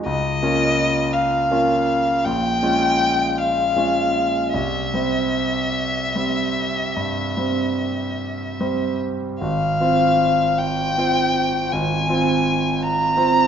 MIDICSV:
0, 0, Header, 1, 3, 480
1, 0, Start_track
1, 0, Key_signature, -4, "minor"
1, 0, Tempo, 723764
1, 38, Time_signature, 12, 3, 24, 8
1, 997, Tempo, 752823
1, 2437, Tempo, 800000
1, 4357, Tempo, 815217
1, 5797, Tempo, 784314
1, 6757, Tempo, 729927
1, 8399, End_track
2, 0, Start_track
2, 0, Title_t, "Violin"
2, 0, Program_c, 0, 40
2, 39, Note_on_c, 0, 75, 86
2, 752, Note_on_c, 0, 77, 64
2, 762, Note_off_c, 0, 75, 0
2, 1474, Note_on_c, 0, 79, 85
2, 1483, Note_off_c, 0, 77, 0
2, 2197, Note_on_c, 0, 77, 70
2, 2206, Note_off_c, 0, 79, 0
2, 2908, Note_off_c, 0, 77, 0
2, 2910, Note_on_c, 0, 76, 68
2, 5542, Note_off_c, 0, 76, 0
2, 5802, Note_on_c, 0, 77, 75
2, 6515, Note_on_c, 0, 79, 77
2, 6524, Note_off_c, 0, 77, 0
2, 7246, Note_on_c, 0, 80, 77
2, 7256, Note_off_c, 0, 79, 0
2, 7971, Note_on_c, 0, 82, 84
2, 7981, Note_off_c, 0, 80, 0
2, 8399, Note_off_c, 0, 82, 0
2, 8399, End_track
3, 0, Start_track
3, 0, Title_t, "Grand piano"
3, 0, Program_c, 1, 0
3, 0, Control_c, 1, 64, 127
3, 39, Note_on_c, 1, 37, 57
3, 50, Control_c, 1, 64, 0
3, 143, Control_c, 1, 64, 127
3, 272, Note_off_c, 1, 37, 0
3, 281, Note_on_c, 1, 58, 40
3, 284, Note_on_c, 1, 61, 43
3, 286, Note_on_c, 1, 65, 49
3, 972, Note_off_c, 1, 58, 0
3, 974, Note_off_c, 1, 61, 0
3, 975, Note_off_c, 1, 65, 0
3, 1000, Note_on_c, 1, 58, 41
3, 1005, Note_on_c, 1, 61, 40
3, 1008, Note_on_c, 1, 65, 45
3, 1455, Note_off_c, 1, 58, 0
3, 1457, Note_off_c, 1, 61, 0
3, 1459, Note_off_c, 1, 65, 0
3, 1475, Note_on_c, 1, 34, 53
3, 1489, Control_c, 1, 64, 0
3, 1608, Control_c, 1, 64, 127
3, 1704, Note_off_c, 1, 34, 0
3, 1713, Note_on_c, 1, 56, 41
3, 1713, Note_on_c, 1, 61, 40
3, 1716, Note_on_c, 1, 65, 43
3, 2411, Note_off_c, 1, 56, 0
3, 2412, Note_off_c, 1, 61, 0
3, 2413, Note_off_c, 1, 65, 0
3, 2438, Note_on_c, 1, 56, 37
3, 2439, Note_on_c, 1, 61, 37
3, 2441, Note_on_c, 1, 65, 39
3, 2882, Note_off_c, 1, 56, 0
3, 2882, Note_off_c, 1, 61, 0
3, 2883, Note_off_c, 1, 65, 0
3, 2903, Note_on_c, 1, 36, 45
3, 2915, Control_c, 1, 64, 0
3, 3010, Control_c, 1, 64, 127
3, 3138, Note_off_c, 1, 36, 0
3, 3142, Note_on_c, 1, 55, 35
3, 3147, Note_on_c, 1, 60, 35
3, 3147, Note_on_c, 1, 72, 40
3, 3846, Note_off_c, 1, 55, 0
3, 3849, Note_off_c, 1, 60, 0
3, 3849, Note_off_c, 1, 72, 0
3, 3872, Note_on_c, 1, 55, 33
3, 3874, Note_on_c, 1, 60, 32
3, 3878, Note_on_c, 1, 72, 38
3, 4332, Note_off_c, 1, 55, 0
3, 4332, Note_off_c, 1, 60, 0
3, 4334, Note_off_c, 1, 72, 0
3, 4358, Note_on_c, 1, 43, 40
3, 4590, Note_off_c, 1, 43, 0
3, 4597, Note_on_c, 1, 55, 34
3, 4600, Note_on_c, 1, 60, 36
3, 4602, Note_on_c, 1, 72, 36
3, 5298, Note_off_c, 1, 55, 0
3, 5299, Note_off_c, 1, 60, 0
3, 5301, Note_off_c, 1, 72, 0
3, 5324, Note_on_c, 1, 55, 33
3, 5325, Note_on_c, 1, 60, 35
3, 5326, Note_on_c, 1, 72, 39
3, 5774, Note_off_c, 1, 55, 0
3, 5774, Note_off_c, 1, 60, 0
3, 5775, Note_off_c, 1, 72, 0
3, 5800, Note_on_c, 1, 32, 52
3, 5806, Control_c, 1, 64, 0
3, 5906, Control_c, 1, 64, 127
3, 6029, Note_off_c, 1, 32, 0
3, 6039, Note_on_c, 1, 60, 35
3, 6043, Note_on_c, 1, 65, 39
3, 6046, Note_on_c, 1, 72, 42
3, 6734, Note_off_c, 1, 60, 0
3, 6736, Note_off_c, 1, 65, 0
3, 6738, Note_off_c, 1, 72, 0
3, 6758, Note_on_c, 1, 60, 36
3, 6760, Note_on_c, 1, 65, 37
3, 6764, Note_on_c, 1, 72, 43
3, 7222, Note_off_c, 1, 60, 0
3, 7223, Note_off_c, 1, 65, 0
3, 7225, Note_off_c, 1, 72, 0
3, 7252, Note_on_c, 1, 32, 50
3, 7484, Note_off_c, 1, 32, 0
3, 7492, Note_on_c, 1, 60, 42
3, 7493, Note_on_c, 1, 65, 41
3, 7496, Note_on_c, 1, 72, 42
3, 8178, Note_off_c, 1, 60, 0
3, 8178, Note_off_c, 1, 65, 0
3, 8180, Note_off_c, 1, 72, 0
3, 8199, Note_on_c, 1, 60, 40
3, 8202, Note_on_c, 1, 65, 40
3, 8203, Note_on_c, 1, 72, 44
3, 8399, Note_off_c, 1, 60, 0
3, 8399, Note_off_c, 1, 65, 0
3, 8399, Note_off_c, 1, 72, 0
3, 8399, End_track
0, 0, End_of_file